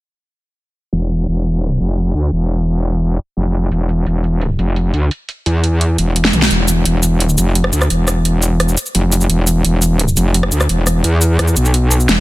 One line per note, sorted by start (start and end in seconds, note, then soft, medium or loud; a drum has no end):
0.93 1.26 E1 loud
1.28 1.78 E1 medium
1.80 2.13 F1 medium
2.15 2.31 D2 medium
2.32 3.18 E1 loud
3.37 3.70 F1 medium
3.72 4.05 E1 medium
3.72 closed hi-hat medium
3.89 closed hi-hat medium
4.06 4.57 E1 medium
4.06 closed hi-hat medium
4.24 closed hi-hat medium
4.41 closed hi-hat medium
4.59 4.92 F1 loud
4.59 closed hi-hat medium
4.76 closed hi-hat medium
4.94 5.10 D2 loud
4.94 closed hi-hat medium
5.11 closed hi-hat medium
5.29 closed hi-hat medium
5.46 5.97 E2 medium
5.46 closed hi-hat medium
5.64 closed hi-hat medium
5.81 closed hi-hat medium
5.98 6.32 E1 loud
5.98 closed hi-hat medium
6.16 closed hi-hat medium
6.25 snare medium
6.33 6.49 B1 loud
6.33 closed hi-hat medium
6.33 mid tom medium
6.42 snare medium
6.51 6.84 E1 medium
6.51 closed hi-hat loud
6.68 closed hi-hat medium
6.68 cabasa medium
6.85 7.37 E1 medium
6.85 closed hi-hat loud
7.03 closed hi-hat medium
7.03 cabasa medium
7.20 closed hi-hat medium
7.29 cabasa soft
7.38 7.71 F1 medium
7.38 closed hi-hat medium
7.38 cabasa medium
7.55 closed hi-hat medium
7.64 cross-stick soft
7.73 7.89 D2 medium
7.73 closed hi-hat medium
7.73 cabasa medium
7.82 cross-stick soft
7.82 cabasa soft
7.90 8.76 E1 loud
7.90 closed hi-hat loud
8.08 cross-stick soft
8.08 closed hi-hat medium
8.08 cabasa medium
8.25 closed hi-hat medium
8.43 closed hi-hat medium
8.43 cabasa medium
8.60 cross-stick soft
8.60 closed hi-hat loud
8.69 cabasa soft
8.77 closed hi-hat medium
8.77 cabasa medium
8.86 cabasa soft
8.95 9.28 F1 loud
8.95 closed hi-hat medium
9.12 closed hi-hat medium
9.12 cabasa medium
9.21 cabasa soft
9.30 9.63 E1 medium
9.30 closed hi-hat medium
9.47 closed hi-hat medium
9.47 cabasa medium
9.65 10.16 E1 medium
9.65 closed hi-hat medium
9.82 closed hi-hat medium
9.82 cabasa medium
9.99 closed hi-hat medium
10.08 cabasa soft
10.17 10.51 F1 loud
10.17 closed hi-hat medium
10.17 cabasa medium
10.34 closed hi-hat medium
10.43 cross-stick soft
10.52 10.68 D2 medium
10.52 closed hi-hat medium
10.52 cabasa medium
10.61 cross-stick soft
10.61 cabasa soft
10.69 11.03 E1 loud
10.69 closed hi-hat medium
10.87 cross-stick soft
10.87 closed hi-hat medium
10.87 cabasa medium
11.04 11.38 E2 medium
11.04 closed hi-hat medium
11.22 closed hi-hat medium
11.22 cabasa medium
11.39 11.55 E2 medium
11.39 cross-stick soft
11.39 closed hi-hat medium
11.48 cabasa soft
11.57 12.07 B1 loud
11.57 closed hi-hat medium
11.57 cabasa medium
11.65 cabasa soft
11.74 closed hi-hat medium
11.91 closed hi-hat medium
11.91 cabasa medium
12.00 cabasa soft
12.09 12.20 E1 medium
12.09 snare soft
12.09 closed hi-hat medium